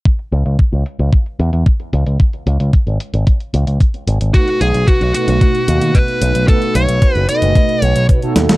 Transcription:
0.05 kick, closed hi-hat
0.19 closed hi-hat
0.32 C#2, closed hi-hat
0.46 C#2, closed hi-hat
0.59 kick, closed hi-hat
0.72 C#2, closed hi-hat
0.86 closed hi-hat
0.99 C#2, closed hi-hat
1.13 kick, closed hi-hat
1.26 closed hi-hat
1.39 E2, closed hi-hat
1.53 E2, closed hi-hat
1.66 kick, closed hi-hat
1.80 closed hi-hat
1.93 C#2, closed hi-hat
2.06 C#2, closed hi-hat
2.20 kick, closed hi-hat
2.33 closed hi-hat
2.46 C#2, closed hi-hat
2.60 C#2, closed hi-hat
2.73 kick, closed hi-hat
2.87 G#1, closed hi-hat
3.00 closed hi-hat
3.13 G#1, closed hi-hat
3.27 kick, closed hi-hat
3.40 closed hi-hat
3.54 C#2, closed hi-hat
3.67 C#2, closed hi-hat
3.80 kick, closed hi-hat
3.94 closed hi-hat
4.07 G#1, closed hi-hat
4.21 G#1, closed hi-hat
4.34 B2 A3 D#4 F#4 B4, kick, closed hi-hat
4.48 closed hi-hat
4.61 B1 G#4, closed hi-hat
4.74 B1, closed hi-hat
4.88 F#4, kick, closed hi-hat
5.01 B1, closed hi-hat
5.14 B2 A3 D#4 F#4 B4, closed hi-hat
5.28 B1, closed hi-hat
5.41 kick, closed hi-hat
5.55 closed hi-hat
5.68 D#2, closed hi-hat
5.81 D#2, closed hi-hat
5.95 B4, kick, closed hi-hat
6.08 closed hi-hat
6.21 B1, closed hi-hat
6.35 B1, closed hi-hat
6.48 B2 A3 D#4 F#4 A4 B4, kick, closed hi-hat
6.62 closed hi-hat
6.75 B1 C#5, closed hi-hat
6.88 B1, closed hi-hat
7.02 kick, closed hi-hat
7.15 F#1, closed hi-hat
7.29 B2 A3 D#4 F#4 B4 D#5, closed hi-hat
7.42 F#1, closed hi-hat
7.55 kick, closed hi-hat
7.69 closed hi-hat
7.82 B1 C#5, closed hi-hat
7.96 B1, closed hi-hat
8.09 kick, closed hi-hat
8.22 B2 A3 D#4 F#4 A4, closed hi-hat
8.36 D#2, snare, closed hi-hat
8.49 D#2, snare, closed hi-hat

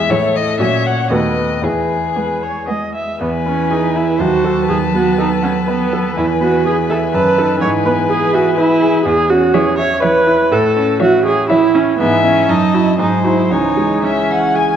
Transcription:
Already playing: E2 G#3 E4 G#4 E5
0.08 A2 E3 A3 E4 A4 C#5 E5
0.36 D#5
0.59 A#2 F#3 C#4 F#4 C#5 E5
0.87 F#5
1.10 D#2 A3 B3 F#4 A4 B4 D#5
1.62 E2 B3 E4 G#4 B4
2.16 G#3 B3 B4
2.43 C#5
2.68 G#3 B3 D#5
2.95 E5
3.20 E2 E3 B3 B4 G#5
3.46 B3 C#4
3.70 D#4 G#4
3.95 E4 E5
4.19 D#2 F#3 F#4 C5 A5
4.44 F#4 A4
4.69 D#2 G#4 B4
4.94 B3 F#4
5.18 D#4 A4
5.42 C#4 F#5
5.67 B3 B4
5.93 A4
6.17 E2 E3 E4 G#5
6.41 B3 F#4
6.65 G#4
6.90 A4 E5
7.14 F#2 D#3 B4 A5
7.38 D#4 A4
7.61 G#2 E3 B4 C#5 G#5
7.85 B3 B4
8.09 G#4
8.33 F#4 E5
8.57 E4 B4
8.81 G#4
9.05 E2 G#4
9.30 C#4 F#4
9.54 E3 G#4 C#5 E5
9.79 C#5 E5
10.02 E3 B4 C#5 E5
10.27 E4
10.51 A2 A4
10.76 C#4
11.00 E3 F#4 C#5 E5
11.25 G#4 C#5
11.50 E3 E4 C#5 E5
11.75 C#4 E4
11.98 G#2 E3 B3 E5 G#5
12.24 C#4 E4 E5
12.48 F#2 F#3 D#4 D#5 A5
12.74 E4 F#4 D#5
12.99 G#2 F#3 D#4 C5 G#5
13.24 E4 F#4 C5
13.50 C#2 E3 D#4 C#5 G#5
13.77 G#3
14.02 E3 C#4 C#5 E5 G#5
14.30 E5 F#5
14.55 G#4 G#5

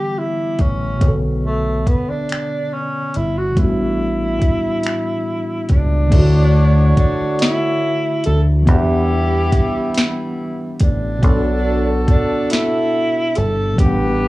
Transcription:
Already playing: D3 E3 G3 B3 G4 F#5
0.18 E4
0.59 A1 C#4, kick, closed hi-hat
0.96 B2 B3
1.01 B1 D3 C#5, kick, closed hi-hat
1.08 A4
1.46 A3
1.86 B3, kick, closed hi-hat
2.09 D4
2.29 finger snap, closed hi-hat
2.73 C#4
3.14 G1 E4, closed hi-hat
3.37 F#4
3.52 A2 E3
3.56 A1 G3 B3 E4, kick, closed hi-hat
3.61 D4 F#4
4.42 kick, closed hi-hat
4.84 finger snap, closed hi-hat
5.69 C#2 D4, kick, closed hi-hat
6.07 D3 A3
6.12 D2 A3 E4 F#4 C#5, kick, closed hi-hat, crash
6.18 F#4
6.97 D4, kick, closed hi-hat
7.39 E4, snare, closed hi-hat
8.24 D2 A4, closed hi-hat
8.63 E3 B3
8.67 E2 G3 B3 D4 E4 G4, kick, closed hi-hat
8.71 G4 F#5
9.52 muted fingered electric bass stroke, kick, closed hi-hat
9.95 snare, closed hi-hat
10.79 A1 D4, kick, closed hi-hat
11.18 B2 B3
11.22 B1 D4 F#4 A4 C#5, kick, closed hi-hat
11.27 D4 A4
12.08 D4, kick, closed hi-hat
12.50 E4, snare, closed hi-hat
13.35 G1 A4, closed hi-hat
13.74 A2 E3
13.78 A1 G3 B3 G4 B4, kick, closed hi-hat
13.82 D4 F#5

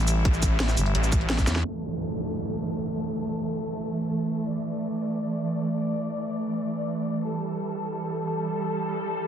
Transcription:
Already playing: A1 E3 G3 E4
0.08 closed hi-hat, cabasa
0.25 A1, kick, closed hi-hat
0.34 cabasa
0.43 kick, closed hi-hat, cabasa
0.60 snare, closed hi-hat
0.69 snare, closed hi-hat, cabasa
0.77 G1, closed hi-hat, cabasa
0.86 closed hi-hat
0.95 A1, closed hi-hat
1.04 cabasa
1.12 kick, closed hi-hat, cabasa
1.21 closed hi-hat
1.30 snare, closed hi-hat
1.39 kick, snare, closed hi-hat, cabasa
1.47 E2, snare, closed hi-hat, cabasa
1.56 snare
1.65 E3 A3 A4, downlifter
1.82 closed hi-hat
2.17 closed hi-hat
2.52 closed hi-hat
2.87 closed hi-hat
3.04 closed hi-hat
3.22 closed hi-hat
3.39 closed hi-hat
3.56 closed hi-hat
3.74 closed hi-hat
3.91 closed hi-hat
4.00 closed hi-hat
4.09 closed hi-hat
4.26 closed hi-hat
4.44 D5, closed hi-hat
4.61 closed hi-hat
4.79 closed hi-hat
4.96 closed hi-hat
5.13 closed hi-hat
5.31 closed hi-hat
5.48 closed hi-hat
5.66 closed hi-hat
5.83 closed hi-hat
6.01 closed hi-hat
6.18 closed hi-hat
6.27 closed hi-hat
6.36 closed hi-hat
6.53 closed hi-hat
6.71 closed hi-hat
6.79 closed hi-hat
6.88 closed hi-hat
7.05 closed hi-hat
7.23 G3 A4, closed hi-hat
7.40 closed hi-hat
7.58 closed hi-hat
7.75 closed hi-hat
7.93 closed hi-hat
8.10 closed hi-hat
8.27 closed hi-hat
8.45 closed hi-hat
8.62 closed hi-hat
8.80 closed hi-hat
8.97 closed hi-hat
9.06 closed hi-hat
9.15 closed hi-hat

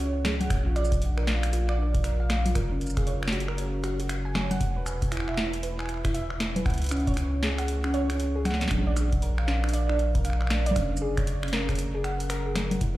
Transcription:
Already playing: C#2
0.25 G#4, finger snap, snare, closed hi-hat, low conga
0.41 F#5, closed hi-hat, low conga
0.50 A#1, finger snap, kick, closed hi-hat
0.66 F4
0.76 D5, finger snap, closed hi-hat, shaker
0.85 shaker
0.92 D4, kick, closed hi-hat, shaker
1.02 closed hi-hat
1.17 A#4, finger snap
1.27 F5, snare
1.43 finger snap, closed hi-hat
1.53 F4, closed hi-hat
1.69 D5, finger snap
1.78 D4
1.94 kick, closed hi-hat
2.04 A#4, finger snap, closed hi-hat
2.20 F5
2.30 finger snap, snare, closed hi-hat
2.46 F4, closed hi-hat, low conga
2.55 F#1 A#4, finger snap, kick, closed hi-hat
2.71 C#4
2.81 closed hi-hat, shaker
2.86 shaker
2.90 shaker
2.97 G#4, finger snap, kick, closed hi-hat
3.07 C#5, closed hi-hat
3.23 finger snap
3.28 snare
3.32 F#4, closed hi-hat
3.40 closed hi-hat
3.48 A#4, finger snap
3.58 C#4, closed hi-hat
3.84 F#4, finger snap, closed hi-hat
3.99 F#4, closed hi-hat
4.09 finger snap, closed hi-hat
4.25 G#5
4.35 C#5, finger snap, snare, low conga
4.51 F#5, closed hi-hat, low conga
4.61 E1, kick, closed hi-hat
4.76 B4
4.86 G#5, finger snap, closed hi-hat, shaker
5.02 kick, closed hi-hat
5.12 E4, finger snap, closed hi-hat
5.17 finger snap
5.20 finger snap
5.28 E5, finger snap
5.34 E4, finger snap
5.37 finger snap, snare
5.53 closed hi-hat
5.63 B4, closed hi-hat
5.79 G#5, finger snap
5.86 finger snap
5.89 finger snap, closed hi-hat
5.94 finger snap
5.97 finger snap
6.05 E4, finger snap, kick, closed hi-hat
6.14 E5, closed hi-hat
6.30 E4, finger snap
6.40 snare, closed hi-hat
6.56 B4, closed hi-hat, low conga
6.66 C#2 F#5, finger snap, kick, closed hi-hat
6.70 closed hi-hat
6.74 closed hi-hat
6.78 closed hi-hat
6.82 closed hi-hat
6.84 closed hi-hat
6.86 closed hi-hat
6.89 C#4, finger snap, closed hi-hat, shaker
6.97 closed hi-hat
7.00 closed hi-hat
7.07 C#5, kick, closed hi-hat
7.14 C#4, finger snap, closed hi-hat
7.17 closed hi-hat
7.43 G#4, snare
7.58 F#5, finger snap, closed hi-hat
7.68 closed hi-hat
7.84 C#4, finger snap
7.94 C#5, closed hi-hat
8.10 C#4, finger snap, closed hi-hat
8.20 closed hi-hat
8.36 G#4
8.45 F#5, finger snap, snare, closed hi-hat, low conga
8.51 snare
8.54 snare
8.61 snare, closed hi-hat, low conga
8.64 low conga
8.66 snare, low conga
8.68 D4, finger snap, closed hi-hat, low conga
8.71 A#1, kick, low conga
8.75 low conga
8.79 low conga
8.83 D5, low conga
8.97 D4, finger snap, closed hi-hat, shaker
9.12 kick, closed hi-hat
9.22 A#4, closed hi-hat
9.38 F5, finger snap
9.48 snare
9.64 D4, finger snap
9.69 closed hi-hat
9.73 D5, closed hi-hat
9.89 D4, finger snap
9.99 closed hi-hat
10.15 A#4, kick, closed hi-hat
10.25 F5, finger snap, closed hi-hat
10.30 finger snap
10.33 finger snap
10.41 finger snap
10.47 D4, finger snap
10.50 finger snap, snare, closed hi-hat
10.66 D5, closed hi-hat
10.71 low conga
10.76 F#1 C#4, finger snap, kick, closed hi-hat
10.97 shaker
11.02 G#4
11.17 C#5, finger snap, kick, closed hi-hat
11.27 closed hi-hat
11.43 C#4, finger snap
11.48 closed hi-hat
11.53 A#4, snare
11.69 C#4, finger snap, kick, closed hi-hat
11.75 closed hi-hat
11.79 closed hi-hat
11.94 G#4
12.04 F#5, finger snap, closed hi-hat
12.20 closed hi-hat
12.30 A#4, finger snap, closed hi-hat
12.46 G#4
12.56 A#4, finger snap, snare, closed hi-hat, low conga
12.71 closed hi-hat, low conga
12.81 E1 E4, kick, closed hi-hat

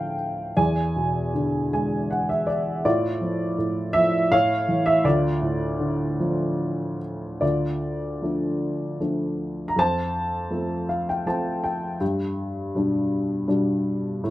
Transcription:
Already playing: D2 A2 D3 F3 F5 G5 A5
0.56 E2 D5 G#5
0.96 B2
1.34 D3
1.73 G#3 G#5
2.11 F#5
2.29 E5
2.47 D5
2.85 A2 F4 D5
3.21 F3
3.58 A2
3.93 F3 E5
4.31 A2 C#5 F5
4.68 E3
4.86 E5
5.04 D2 F4 D5
5.42 A2
5.79 D3
6.20 F3
7.41 D2 F4 D5
8.22 F3 A3 D4
9.00 F3 A3 D4
9.68 A#5
9.76 F2 C5 A5
10.50 F3 A3 C4
10.89 F5
11.09 G5
11.26 F3 A3 C4 A5
11.64 G5
12.00 G2
12.75 B2 G3 D4
13.48 B2 G3 D4
14.24 A2

